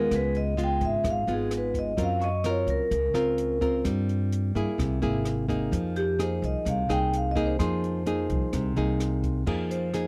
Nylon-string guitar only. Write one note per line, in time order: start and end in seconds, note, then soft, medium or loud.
0.00 0.54 G#3 medium
0.00 0.55 B3 medium
0.00 0.55 F4 medium
0.12 1.03 C#3 medium
0.57 1.24 G#3 medium
0.57 1.24 B3 soft
0.57 1.25 F4 medium
1.04 1.96 G#2 medium
1.28 1.94 G#3 medium
1.28 1.95 B3 medium
1.28 1.95 F4 medium
1.97 2.89 F#3 medium
1.97 2.28 C4 medium
1.97 2.28 F4 medium
1.97 2.29 A#4 medium
2.45 2.92 C4 medium
2.45 2.92 F4 medium
2.45 2.92 A#4 medium
2.91 3.83 C#3 medium
3.14 3.58 C4 medium
3.14 3.58 F4 medium
3.14 3.58 A#4 medium
3.61 4.51 C4 medium
3.61 4.52 F4 medium
3.61 4.52 A#4 medium
3.85 4.76 G3 medium
4.55 4.99 A#3 medium
4.55 4.99 E4 medium
4.55 4.99 G#4 medium
4.78 5.70 C3 medium
5.02 5.45 A#3 medium
5.02 5.45 E4 medium
5.02 5.46 G#4 medium
5.49 6.15 A#3 medium
5.49 6.16 D#4 medium
5.49 6.16 G#4 medium
5.72 6.63 F3 medium
6.19 6.85 A#3 medium
6.19 6.86 D#4 medium
6.19 6.86 G#4 medium
6.65 7.57 C3 medium
6.89 7.32 A#3 medium
6.89 7.32 D#4 medium
6.89 7.33 G#4 medium
7.35 7.55 A#3 medium
7.35 7.56 D#4 medium
7.35 7.56 G#4 medium
7.59 8.50 F3 medium
7.59 8.02 A#3 medium
7.59 8.02 D#4 medium
7.59 8.03 G#4 medium
8.06 8.73 A#3 medium
8.06 8.73 D#4 medium
8.06 8.73 G#4 medium
8.53 9.44 C3 medium
8.76 9.43 A#3 medium
8.76 9.43 D#4 medium
8.76 9.43 G#4 medium
9.47 10.07 F3 soft
9.47 9.89 A#3 soft
9.47 9.90 D#4 soft
9.47 9.90 G#4 medium
9.94 10.07 A#3 soft
9.94 10.07 D#4 medium
9.94 10.07 G#4 medium